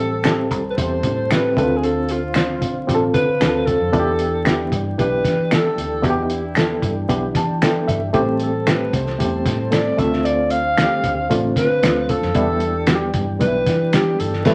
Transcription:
Already playing: fingered electric bass A1, tonewheel organ G3 C4 A4, alto saxophone A4
0.24 reed electric piano C4 E4 G4 A4, finger snap, snare, closed hi-hat
0.51 fingered electric bass C2, kick, closed hi-hat
0.70 alto saxophone B4
0.76 fingered electric bass E2, reed electric piano C4 E4 G4 C5, alto saxophone C5, kick, closed hi-hat
1.03 fingered electric bass A2, kick, closed hi-hat
1.31 reed electric piano C4 E4 G4 B4, alto saxophone B4, finger snap, snare, closed hi-hat
1.56 fingered electric bass D2, tonewheel organ D3 F4, reed electric piano C4 D4 E4 A4, alto saxophone B4, kick, closed hi-hat
1.64 reed electric piano F4
1.76 alto saxophone G#4
1.83 alto saxophone A4, closed hi-hat
2.09 alto saxophone F4, closed hi-hat
2.34 reed electric piano C4 D4 F4 C5, finger snap, snare, closed hi-hat
2.62 fingered electric bass B1, kick, closed hi-hat
2.87 fingered electric bass A1, reed electric piano C4 D4 F4 G4, kick, closed hi-hat
2.95 reed electric piano A4
3.14 fingered electric bass D3, alto saxophone B4, kick, closed hi-hat
3.40 fingered electric bass D2, reed electric piano C4 D4 F4 G#4, finger snap, snare, closed hi-hat
3.48 reed electric piano A4
3.66 alto saxophone A4, kick, closed hi-hat
3.81 fingered electric bass F2
3.92 fingered electric bass E2, tonewheel organ E3 D4 G4, reed electric piano B3 D4 E4 F4, kick, closed hi-hat
4.00 reed electric piano G4
4.19 closed hi-hat
4.45 reed electric piano B3 D4 E4 G4, finger snap, snare, closed hi-hat
4.72 fingered electric bass G2, kick, closed hi-hat
4.98 fingered electric bass B1, reed electric piano B3 D4 E4 G4, alto saxophone B4, kick, closed hi-hat
5.24 fingered electric bass E3, kick, snare, closed hi-hat
5.51 reed electric piano B3 D4 E4 A4, alto saxophone A4, finger snap, snare, closed hi-hat
5.78 fingered electric bass D2, closed hi-hat
6.02 fingered electric bass E2, reed electric piano B3 D4 E4 F#4, alto saxophone G4, kick, closed hi-hat
6.10 reed electric piano G4
6.23 alto saxophone D#4
6.30 alto saxophone E4, closed hi-hat
6.55 reed electric piano B3 D4 E4 A4, finger snap, snare, closed hi-hat
6.82 fingered electric bass G2, kick, closed hi-hat
7.09 fingered electric bass B1, reed electric piano B3 D4 E4 G4, kick, closed hi-hat
7.35 fingered electric bass E3, reed electric piano A5, kick, closed hi-hat
7.62 reed electric piano B3 D4 E4 A4 G5, finger snap, snare, closed hi-hat
7.88 fingered electric bass G1, reed electric piano E5, kick, closed hi-hat
8.13 fingered electric bass A1, tonewheel organ G3 C4 A4, reed electric piano A3 C4 E4 G4, alto saxophone C5, kick, closed hi-hat
8.40 alto saxophone A4, closed hi-hat
8.67 reed electric piano A3 C4 E4 G4, alto saxophone B4, finger snap, snare, closed hi-hat
8.93 fingered electric bass C2, alto saxophone C5, kick, closed hi-hat
9.07 snare
9.18 fingered electric bass E2, reed electric piano A3 B3 E4 G4, kick, closed hi-hat
9.25 reed electric piano C4
9.46 fingered electric bass A2, kick, snare, closed hi-hat
9.71 reed electric piano A3 C4 E4 A4, alto saxophone D5, finger snap, snare, closed hi-hat
9.97 fingered electric bass D2, tonewheel organ D3 F4, reed electric piano A3 C4 D4 F4, alto saxophone E5, kick, closed hi-hat
10.13 snare
10.25 alto saxophone D5, closed hi-hat
10.50 alto saxophone F5, closed hi-hat
10.77 reed electric piano A3 C4 D4 F4, finger snap, snare, closed hi-hat
10.85 reed electric piano G4
11.04 fingered electric bass D2, kick, closed hi-hat
11.30 fingered electric bass A1, reed electric piano A3 C4 D4 F4, kick, closed hi-hat
11.56 fingered electric bass D3, alto saxophone B4, kick, snare, closed hi-hat
11.83 fingered electric bass D2, reed electric piano A3 C4 D4 F4, finger snap, snare, closed hi-hat
12.09 alto saxophone A4, kick, closed hi-hat
12.23 fingered electric bass F2, snare
12.35 fingered electric bass E2, tonewheel organ E3 D4 G4, reed electric piano G3 B3 D4 E4, kick, closed hi-hat
12.60 closed hi-hat
12.87 reed electric piano G3 B3 D4 F#4, finger snap, snare, closed hi-hat
12.95 reed electric piano G4
13.14 fingered electric bass G2, kick, closed hi-hat
13.39 fingered electric bass B1, reed electric piano G3 B3 D4 D#4, alto saxophone B4, kick, closed hi-hat
13.47 reed electric piano E4
13.66 fingered electric bass E3, kick, snare, closed hi-hat
13.93 reed electric piano G3 B3 D4 G4, alto saxophone G4, finger snap, snare, closed hi-hat
14.19 fingered electric bass G1, alto saxophone A4, closed hi-hat
14.33 snare
14.45 fingered electric bass A1, reed electric piano G3 A3 E4, tonewheel organ G3 C4 A4, alto saxophone B4, kick, snare, crash

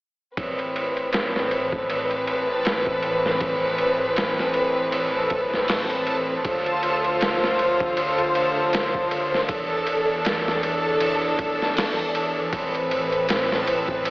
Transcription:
0.37 string section A2 E3 C4 B4, synth texture A4, kick, ride
0.59 ride
0.76 ride
0.97 ride
1.13 snare, ride
1.36 snare
1.51 ride
1.72 kick
1.90 ride
2.11 ride
2.27 ride
2.65 snare, ride
2.86 kick
3.02 ride
3.26 snare
3.40 kick, ride
3.78 ride
4.16 snare, ride
4.39 snare
4.54 ride
4.92 ride
5.30 kick, ride
5.54 snare
5.68 snare, open hi-hat
5.90 ride
6.07 ride
6.45 string section D2 D3 F4 C5, kick, ride
6.66 ride
6.83 ride
7.04 ride
7.21 snare, ride
7.44 snare
7.59 ride
7.80 kick
7.97 ride
8.18 ride
8.35 ride
8.73 snare, ride
8.94 kick
9.11 ride
9.34 snare
9.49 string section E2 E3 D4 A4, kick, ride
9.87 ride
10.25 snare, ride
10.48 snare
10.63 ride
11.00 ride
11.39 kick, ride
11.62 snare
11.77 snare, open hi-hat
11.99 ride
12.15 ride
12.53 string section A2 C4 B4, kick, ride
12.75 ride
12.91 ride
13.12 ride
13.29 snare, ride
13.52 snare
13.67 ride
13.88 kick
14.05 ride

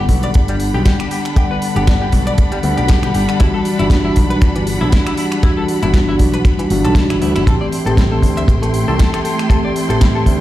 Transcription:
Already playing: tine electric piano D3 G3 B3 F#5, string section G3 D4 F#5 B5
0.09 picked electric bass B1, kick, open hi-hat
0.23 clean electric guitar D5, closed hi-hat
0.34 picked electric bass G1, kick, closed hi-hat
0.48 clean electric guitar G3, closed hi-hat
0.60 open hi-hat
0.74 picked electric bass B1, clean electric guitar G4
0.86 clean electric guitar G4, kick, snare, closed hi-hat
1.00 clean electric guitar G4, finger snap, closed hi-hat
1.11 clean electric guitar G4, open hi-hat
1.25 finger snap, closed hi-hat
1.36 tine electric piano D3 G3 B3 F#5, clean electric guitar G4, kick, closed hi-hat
1.51 clean electric guitar B4
1.62 open hi-hat
1.75 picked electric bass G1, tine electric piano D3 G3 B3 F#5, clean electric guitar G4, closed hi-hat
1.87 clean electric guitar D4, finger snap, kick, snare, closed hi-hat
2.02 clean electric guitar G4
2.12 picked electric bass B1, kick, open hi-hat
2.27 clean electric guitar D5, closed hi-hat
2.38 kick, closed hi-hat
2.52 clean electric guitar G3, muted picked electric bass stroke, closed hi-hat
2.62 picked electric bass D2, tine electric piano D3 G3 B3 F#5, open hi-hat
2.77 picked electric bass B1, clean electric guitar G4, closed hi-hat
2.88 clean electric guitar G4, kick, snare, closed hi-hat
3.03 clean electric guitar G4, finger snap, closed hi-hat
3.14 picked electric bass G1, clean electric guitar G4, open hi-hat
3.29 finger snap, closed hi-hat
3.39 picked electric bass G1, tine electric piano E3 G3 D4 F#4, clean electric guitar E4, kick, closed hi-hat
3.54 clean electric guitar A4
3.65 open hi-hat
3.78 picked electric bass G1, tine electric piano E3 G3 D4 F#4, clean electric guitar E4, closed hi-hat
3.90 clean electric guitar B3, kick, snare, closed hi-hat
4.05 clean electric guitar E4
4.16 picked electric bass B1, kick, open hi-hat
4.30 clean electric guitar B4, closed hi-hat
4.42 picked electric bass G1, kick, closed hi-hat
4.56 clean electric guitar E3, closed hi-hat
4.67 open hi-hat
4.81 picked electric bass B1, clean electric guitar E4
4.92 clean electric guitar E4, kick, snare, closed hi-hat
5.07 clean electric guitar E4, finger snap, closed hi-hat
5.17 clean electric guitar E4, open hi-hat
5.32 finger snap, closed hi-hat
5.43 tine electric piano E3 G3 D4 F#4, clean electric guitar E4, kick, closed hi-hat
5.57 clean electric guitar A4
5.68 open hi-hat
5.83 picked electric bass G1, tine electric piano E3 G3 D4 F#4, clean electric guitar E4, closed hi-hat
5.94 clean electric guitar B3, finger snap, kick, snare, closed hi-hat
6.09 clean electric guitar E4
6.19 picked electric bass B1, kick, open hi-hat
6.34 clean electric guitar B4, closed hi-hat
6.45 kick, closed hi-hat
6.59 clean electric guitar E3, muted picked electric bass stroke, closed hi-hat
6.70 picked electric bass G1, tine electric piano E3 G3 D4 F#4, open hi-hat
6.85 picked electric bass B1, clean electric guitar A4, closed hi-hat
6.95 clean electric guitar E4, kick, snare, closed hi-hat
7.10 picked electric bass G1, clean electric guitar E4, finger snap, closed hi-hat
7.21 picked electric bass D2, tine electric piano E3 G3 D4 F#4, clean electric guitar E4, open hi-hat
7.36 picked electric bass G1, clean electric guitar E4, finger snap, closed hi-hat
7.46 picked electric bass A1, string section A3 E4 G5 C6, tine electric piano A3, clean electric guitar A4, kick, closed hi-hat
7.61 clean electric guitar D5
7.72 open hi-hat
7.85 picked electric bass A1, tine electric piano E3 A3 C4 G4, clean electric guitar A4, closed hi-hat
7.97 clean electric guitar E4, kick, snare, closed hi-hat
8.12 clean electric guitar A4
8.22 picked electric bass D2, kick, open hi-hat
8.37 clean electric guitar E5, closed hi-hat
8.48 picked electric bass A1, kick, closed hi-hat
8.62 clean electric guitar A3, closed hi-hat
8.74 open hi-hat
8.88 picked electric bass C2, clean electric guitar A4
8.99 clean electric guitar A4, kick, snare, closed hi-hat
9.14 clean electric guitar A4, finger snap, closed hi-hat
9.25 clean electric guitar A4, open hi-hat
9.39 finger snap, closed hi-hat
9.49 tine electric piano E3 A3 C4 G4, clean electric guitar A4, kick, closed hi-hat
9.64 clean electric guitar D5
9.76 open hi-hat
9.88 picked electric bass A1, tine electric piano E3 A3 C4 G4, clean electric guitar A4, closed hi-hat
10.01 clean electric guitar E4, finger snap, kick, snare, closed hi-hat
10.15 clean electric guitar A4
10.26 picked electric bass D2, kick, open hi-hat

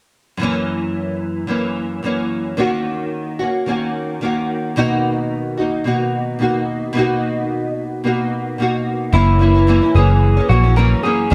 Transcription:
0.37 nylon-string guitar F#2 E3
0.41 nylon-string guitar A#3 C#4
1.47 nylon-string guitar F#2 E3 A#3 C#4
2.03 nylon-string guitar F#2 E3 A#3 C#4
2.57 nylon-string guitar D#3 A#3 C#4 F#4
3.39 nylon-string guitar A#3 C#4 F#4
3.66 nylon-string guitar D#3 A#3 C#4 F#4
4.21 nylon-string guitar D#3 A#3 C#4 F#4
4.76 nylon-string guitar B2 A#3 D#4 F#4
5.57 nylon-string guitar A#3 D#4 F#4
5.84 nylon-string guitar B2 A#3 D#4 F#4
6.39 nylon-string guitar B2 A#3 D#4 F#4
6.93 nylon-string guitar B2 A#3
6.97 nylon-string guitar D#4 F#4
8.04 nylon-string guitar B2 A#3 D#4 F#4
8.58 nylon-string guitar B2 A#3 D#4 F#4
9.13 picked electric bass F#1, nylon-string guitar F#2 E3 A#3 C#4, clean electric guitar E4
9.39 nylon-string guitar F#2 E3 A#3 C#4, clean electric guitar E4
9.54 nylon-string guitar E3 A#3 C#4
9.67 nylon-string guitar F#2 E3 A#3 C#4
9.82 nylon-string guitar E3 A#3 C#4
9.95 picked electric bass F#1, nylon-string guitar F#2 E3 A#3 C#4, clean electric guitar G#4
10.37 nylon-string guitar E3 A#3 C#4
10.49 picked electric bass A#1, nylon-string guitar F#2 E3 A#3 C#4, clean electric guitar F#4
10.63 nylon-string guitar E3 A#3 C#4
10.76 nylon-string guitar F#2 E3 A#3 C#4, clean electric guitar A#4
11.03 nylon-string guitar F#2 E3 A#3 C#4, clean electric guitar G#4
11.30 nylon-string guitar D#3 A#3

